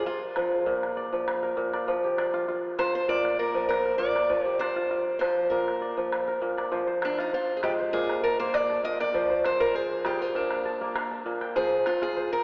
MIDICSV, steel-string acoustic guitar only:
0, 0, Header, 1, 2, 480
1, 0, Start_track
1, 0, Tempo, 605449
1, 1486, Time_signature, 4, 2, 24, 8
1, 9859, End_track
2, 0, Start_track
2, 0, Title_t, "Steel-string acoustic guitar"
2, 0, Program_c, 0, 25
2, 50, Note_on_c, 0, 65, 66
2, 496, Note_off_c, 0, 65, 0
2, 2209, Note_on_c, 0, 72, 88
2, 2329, Note_off_c, 0, 72, 0
2, 2339, Note_on_c, 0, 72, 77
2, 2447, Note_off_c, 0, 72, 0
2, 2450, Note_on_c, 0, 74, 94
2, 2686, Note_off_c, 0, 74, 0
2, 2689, Note_on_c, 0, 70, 81
2, 2912, Note_off_c, 0, 70, 0
2, 2922, Note_on_c, 0, 70, 89
2, 3149, Note_off_c, 0, 70, 0
2, 3155, Note_on_c, 0, 74, 93
2, 3544, Note_off_c, 0, 74, 0
2, 3544, Note_on_c, 0, 72, 93
2, 3638, Note_off_c, 0, 72, 0
2, 3641, Note_on_c, 0, 72, 83
2, 4106, Note_off_c, 0, 72, 0
2, 4115, Note_on_c, 0, 72, 82
2, 4354, Note_off_c, 0, 72, 0
2, 4358, Note_on_c, 0, 70, 68
2, 4813, Note_off_c, 0, 70, 0
2, 5587, Note_on_c, 0, 62, 79
2, 5705, Note_off_c, 0, 62, 0
2, 5708, Note_on_c, 0, 63, 77
2, 5809, Note_off_c, 0, 63, 0
2, 5820, Note_on_c, 0, 65, 84
2, 5999, Note_on_c, 0, 68, 65
2, 6007, Note_off_c, 0, 65, 0
2, 6049, Note_off_c, 0, 68, 0
2, 6052, Note_on_c, 0, 67, 83
2, 6116, Note_off_c, 0, 67, 0
2, 6287, Note_on_c, 0, 68, 91
2, 6511, Note_off_c, 0, 68, 0
2, 6529, Note_on_c, 0, 70, 87
2, 6653, Note_off_c, 0, 70, 0
2, 6656, Note_on_c, 0, 72, 89
2, 6770, Note_off_c, 0, 72, 0
2, 6770, Note_on_c, 0, 74, 97
2, 7010, Note_off_c, 0, 74, 0
2, 7013, Note_on_c, 0, 75, 102
2, 7135, Note_off_c, 0, 75, 0
2, 7138, Note_on_c, 0, 74, 98
2, 7491, Note_off_c, 0, 74, 0
2, 7494, Note_on_c, 0, 72, 92
2, 7613, Note_on_c, 0, 70, 90
2, 7619, Note_off_c, 0, 72, 0
2, 7734, Note_off_c, 0, 70, 0
2, 7734, Note_on_c, 0, 68, 90
2, 7973, Note_off_c, 0, 68, 0
2, 7976, Note_on_c, 0, 67, 88
2, 8100, Note_off_c, 0, 67, 0
2, 8100, Note_on_c, 0, 65, 78
2, 8213, Note_off_c, 0, 65, 0
2, 8213, Note_on_c, 0, 62, 78
2, 8689, Note_off_c, 0, 62, 0
2, 9165, Note_on_c, 0, 68, 90
2, 9388, Note_off_c, 0, 68, 0
2, 9407, Note_on_c, 0, 65, 83
2, 9534, Note_off_c, 0, 65, 0
2, 9534, Note_on_c, 0, 68, 92
2, 9755, Note_off_c, 0, 68, 0
2, 9772, Note_on_c, 0, 70, 99
2, 9859, Note_off_c, 0, 70, 0
2, 9859, End_track
0, 0, End_of_file